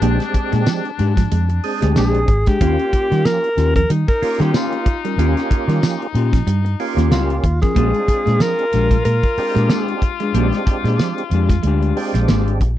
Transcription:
Already playing: D4
0.01 A#1 G#3 A#3 C4 D4 G4, closed hi-hat
0.19 muted clean electric guitar stroke, snare, closed hi-hat
0.33 muted clean electric guitar stroke, muted fingered electric bass stroke, kick, closed hi-hat
0.51 A#2 G#3 D4 G#4, snare, closed hi-hat
0.66 F3, muted clean electric guitar stroke, snare, tambourine
0.84 muted clean electric guitar stroke, closed hi-hat
0.98 G#2 G#3 D4 G4, muted clean electric guitar stroke, closed hi-hat
1.16 F3, muted clean electric guitar stroke, kick, snare, closed hi-hat
1.30 F2 G#3, muted clean electric guitar stroke, closed hi-hat
1.49 muted clean electric guitar stroke, closed hi-hat
1.64 G#3 C4 D4 G#4, open hi-hat
1.82 D2 G#3 D4 G4, snare, closed hi-hat
1.96 A#1 G#3 A#3 D4 G4 G#4, snare, tambourine
2.15 muted clean electric guitar stroke, closed hi-hat
2.28 G#1, muted clean electric guitar stroke, kick, closed hi-hat
2.46 G#3 D4 G4 G#4, kick, snare, closed hi-hat
2.61 D#2 A#3 C#4 F4 G4, kick, closed hi-hat
2.79 muted clean electric guitar stroke, closed hi-hat
2.93 muted fingered electric bass stroke, muted clean electric guitar stroke, kick, closed hi-hat
3.11 D#3 G3 C#4 F4 A#4, snare, closed hi-hat
3.25 F3 A#4, snare, tambourine
3.44 muted clean electric guitar stroke, closed hi-hat
3.57 D#2 C#4 F4 G4, muted clean electric guitar stroke, snare, closed hi-hat
3.76 F3 A#4, muted clean electric guitar stroke, kick, closed hi-hat
3.90 D#3 G3 D#4, muted clean electric guitar stroke, closed hi-hat
4.07 A#4, muted clean electric guitar stroke, kick, closed hi-hat
4.22 A#3 C#4 F4 G4, muted fingered electric bass stroke, open hi-hat
4.40 D#3 G3 C#4 F4 G4, snare, closed hi-hat
4.54 A#3 C#4 F4 G4, snare, tambourine
4.72 muted clean electric guitar stroke, closed hi-hat
4.86 muted clean electric guitar stroke, kick, closed hi-hat
5.05 G3 C#4 F4 A#4, closed hi-hat
5.18 D#2 A#3 C#4 F4 G4, closed hi-hat
5.37 muted clean electric guitar stroke, snare, closed hi-hat
5.51 muted clean electric guitar stroke, muted fingered electric bass stroke, kick, closed hi-hat
5.68 D#3 G3 C#4 F4 A#4, snare, closed hi-hat
5.82 F3, muted clean electric guitar stroke, snare, tambourine
6.01 muted clean electric guitar stroke, closed hi-hat
6.15 A#2 C#4 F4 G4, muted clean electric guitar stroke, closed hi-hat
6.33 F3, muted clean electric guitar stroke, kick, snare, closed hi-hat
6.47 G2 G3, muted clean electric guitar stroke, closed hi-hat
6.65 muted clean electric guitar stroke, closed hi-hat
6.80 A#3 C#4 F4 G4, open hi-hat
6.97 D#2 A#3 C#4 F4 G4, snare, closed hi-hat
7.11 C#2 G3 C#4 F4 G4, snare, tambourine
7.30 muted clean electric guitar stroke, closed hi-hat
7.44 D#2, muted clean electric guitar stroke, kick, closed hi-hat
7.62 F3 C#4 F4 G#4 A#4, kick, snare, closed hi-hat
7.75 A#1 G#3 A#3 C4 D4 F4 G4 G#4, kick, closed hi-hat
7.94 muted clean electric guitar stroke, closed hi-hat
8.08 muted fingered electric bass stroke, muted clean electric guitar stroke, kick, closed hi-hat
8.26 A#2 G#3 D4 G#4, snare, closed hi-hat
8.40 F3 A#4, snare, tambourine
8.59 muted clean electric guitar stroke, closed hi-hat
8.73 A#1 G#3 D4 G4, muted clean electric guitar stroke, snare, closed hi-hat
8.91 F3, muted clean electric guitar stroke, kick, closed hi-hat
9.05 A#2 G#3 A#4, muted clean electric guitar stroke, closed hi-hat
9.23 muted clean electric guitar stroke, kick, closed hi-hat
9.38 G#3 C4 D4 G4, muted fingered electric bass stroke, open hi-hat
9.55 A#2 G#3 D4 G4, snare, closed hi-hat
9.69 G#3 A#3 D4 G4, snare, tambourine
9.88 muted clean electric guitar stroke, closed hi-hat
10.02 muted clean electric guitar stroke, kick, closed hi-hat
10.20 G#3 D4 G#4, closed hi-hat
10.34 A#1 G#3 A#3 C4 D4 G4, closed hi-hat
10.53 muted clean electric guitar stroke, snare, closed hi-hat
10.67 muted fingered electric bass stroke, muted clean electric guitar stroke, kick, closed hi-hat
10.84 A#2 G#3 D4 G#4, snare, closed hi-hat
10.98 F3, muted clean electric guitar stroke, snare, tambourine
11.18 muted clean electric guitar stroke, closed hi-hat
11.31 F2 G#3 D4, muted clean electric guitar stroke, closed hi-hat
11.35 G4
11.49 F3, muted clean electric guitar stroke, kick, snare, closed hi-hat
11.63 D2 G#3, closed hi-hat
11.67 D4 G4
11.82 muted clean electric guitar stroke, closed hi-hat
11.97 G#3 C4 D4 G4, muted clean electric guitar stroke, open hi-hat
12.14 A#1 G#3, muted clean electric guitar stroke, snare, closed hi-hat
12.28 G#1 G#3 A#3 D4 G4, snare, tambourine
12.47 muted clean electric guitar stroke, closed hi-hat
12.61 A#1, muted clean electric guitar stroke, kick, closed hi-hat

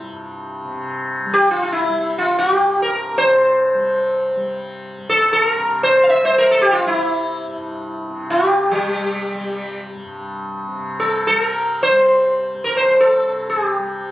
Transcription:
Already playing: C3 G3 E4
0.02 G2
0.64 C3
1.26 G3
1.34 G4
1.51 F4
1.62 F4
1.72 E4
1.89 G3
2.18 F4
2.39 G4
2.50 G2
2.82 A#4
3.13 C3
3.18 C5
3.75 G3
4.36 G3
4.98 G2
5.09 A4
5.33 A4
5.45 A#4
5.59 C3
5.83 C5
6.03 F5
6.10 E5
6.22 G3 C5
6.38 A#4
6.51 A4
6.61 G4
6.70 F4 G4
6.85 G3 E4
7.47 G2
8.10 C3
8.30 G4
8.71 G3
9.34 G3
9.95 G2
10.67 C3
11.00 A4
11.27 G3 A4
11.39 A#4
11.83 C5
11.91 G3
12.54 G2
12.64 A#4
12.77 C5
13.00 A4
13.16 C3
13.50 G#4
13.65 G4
13.79 G3

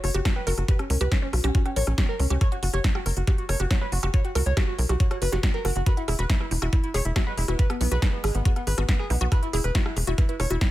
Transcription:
Already playing: sub drop
0.04 F#1 F#4 C#5, cross-stick, open hi-hat
0.14 F#1 F#4 G4, closed hi-hat
0.25 F#4, kick, cross-stick, snare, closed hi-hat
0.36 B4 G5
0.47 F#1 F#4 A#4, open hi-hat
0.58 F#1 F#4, cross-stick, closed hi-hat
0.68 G4 B4, kick, closed hi-hat
0.79 C#4, cross-stick, closed hi-hat
0.90 C#2 C#4 A#4, open hi-hat
1.01 C#2 G4 B4, closed hi-hat
1.12 C#4 C#5, kick, cross-stick, snare, closed hi-hat
1.22 C#4 C#5
1.33 B1 F#4, cross-stick, open hi-hat
1.44 B1 C#4 G4, closed hi-hat
1.55 C#4 F#4, kick, closed hi-hat
1.66 C#4 G5, cross-stick, closed hi-hat
1.76 A#1 A#4 C#5, open hi-hat
1.87 A#1 C#4, cross-stick, closed hi-hat
1.98 C#4 G4, kick, snare, closed hi-hat
2.09 A#4
2.19 C#2 C#4 A#4, cross-stick, open hi-hat
2.30 C#2 C#4 G4, closed hi-hat
2.41 C#5, kick, cross-stick, closed hi-hat
2.52 F#4 C#5, closed hi-hat
2.63 F#1 F#4, open hi-hat
2.73 F#1 G4 C#5, cross-stick, closed hi-hat
2.84 F#4, kick, snare, closed hi-hat
2.95 F#4 G5, cross-stick
3.06 F#1 A#4, open hi-hat
3.17 F#1 F#4, closed hi-hat
3.27 F#4 G4, kick, cross-stick, snare, closed hi-hat
3.38 F#4, closed hi-hat
3.49 F#1 A#4 C#5, cross-stick, open hi-hat
3.60 F#1 F#4 G4, closed hi-hat
3.71 F#4 C#5, kick, snare, closed hi-hat
3.81 B4 C#5, cross-stick
3.92 F#1 F#4, open hi-hat
4.03 F#1 F#4 G4, cross-stick, closed hi-hat
4.14 F#4 C#5, kick, closed hi-hat
4.25 F#4 G5, closed hi-hat
4.35 C#2 F#4 A#4, cross-stick, open hi-hat
4.46 C#2 C#5, closed hi-hat
4.57 F#4 G4, kick, cross-stick, snare, closed hi-hat
4.68 F#4
4.79 B1 A#4, open hi-hat
4.89 B1 F#4 G4, cross-stick, closed hi-hat
5.00 F#4 C#5, kick, closed hi-hat
5.11 F#4 C#5, cross-stick, closed hi-hat
5.22 F#1 F#4 B4, open hi-hat
5.32 F#1 F#4 G4, snare, closed hi-hat
5.43 F#4, kick, cross-stick, snare, closed hi-hat
5.54 A#4 G5
5.65 F#1 F#4 A#4, cross-stick, open hi-hat
5.76 F#1 F#4, closed hi-hat
5.86 F#4 B4, kick, cross-stick, closed hi-hat
5.97 E4 F#5, closed hi-hat
6.08 E1 E4 G#4, cross-stick, open hi-hat
6.19 E1 F#4 B4, closed hi-hat
6.30 E4 B4, kick, snare, closed hi-hat
6.40 E4 B4, cross-stick
6.51 E1 E4, open hi-hat
6.62 E1 E4 F#4, cross-stick, closed hi-hat
6.73 E4, kick, snare, closed hi-hat
6.84 E4, closed hi-hat
6.94 E1 G#4 C#5, cross-stick, open hi-hat
7.05 E1 E4, closed hi-hat
7.16 E4 F#4, kick, cross-stick, snare, closed hi-hat
7.27 G#3 B4 F#5
7.37 E1 G#3 E4 G#4, open hi-hat
7.48 E1 B3 E4 F#4, cross-stick, closed hi-hat
7.59 B4, kick, closed hi-hat
7.70 B3 B4, cross-stick, closed hi-hat
7.81 B1 B3 E4, open hi-hat
7.91 B1 G#3 F#4 B4, closed hi-hat
8.02 B3 E4, kick, cross-stick, snare, closed hi-hat
8.13 B3
8.24 G#1 G#4, cross-stick, open hi-hat
8.35 G#1 B3, closed hi-hat
8.45 B3 F#4, kick, closed hi-hat
8.56 B3 F#5, cross-stick, closed hi-hat
8.67 G#1 G#4 B4, open hi-hat
8.78 G#1 B3 F#4, cross-stick, closed hi-hat
8.89 B3 B4, kick, snare, closed hi-hat
8.99 G#4 B4
9.10 B1 B3 E4, cross-stick, open hi-hat
9.21 B1 B3 F#4, closed hi-hat
9.32 E4 B4, kick, cross-stick, closed hi-hat
9.43 E4, closed hi-hat
9.53 E1 E4 G#4, open hi-hat
9.64 E1 B4, cross-stick, closed hi-hat
9.75 E4 F#4, kick, snare, closed hi-hat
9.86 E4 F#5, cross-stick
9.97 E1 G#4, open hi-hat
10.07 E1 E4 F#4, closed hi-hat
10.18 E4 B4, kick, cross-stick, snare, closed hi-hat
10.29 E4 B4, closed hi-hat
10.40 E1 E4 C#5, cross-stick, open hi-hat
10.50 E1 E4 F#4, closed hi-hat
10.61 E4, kick, snare, closed hi-hat

